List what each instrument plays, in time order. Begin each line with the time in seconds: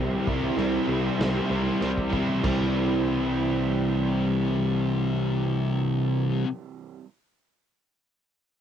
Already playing: picked electric bass C2, overdriven electric guitar C3 E3 G3 C4 E4, twelve-string acoustic guitar C4, analog synth pad E4 C5 G5 C6
0.27 picked electric bass C2, overdriven electric guitar C3 G3 C4, twelve-string acoustic guitar E4, kick
0.57 picked electric bass C2, overdriven electric guitar C3 E3 G3 C4 E4, crash
0.88 picked electric bass C2, overdriven electric guitar C3 G3 C4 E4
1.19 picked electric bass C2, overdriven electric guitar C3 G3 C4, snare, crash
1.50 picked electric bass C2, overdriven electric guitar C3 G3 C4
1.81 picked electric bass C2, overdriven electric guitar C3 E3 G3 C4 E4, crash
1.98 kick
2.12 overdriven electric guitar C3 G3 C4 E4, kick
2.42 picked electric bass C2, overdriven electric guitar C3 E3 G3, analog synth pad C3 G3 E4 C5 G5, kick, crash
2.47 overdriven electric guitar C4 E4, twelve-string acoustic guitar E4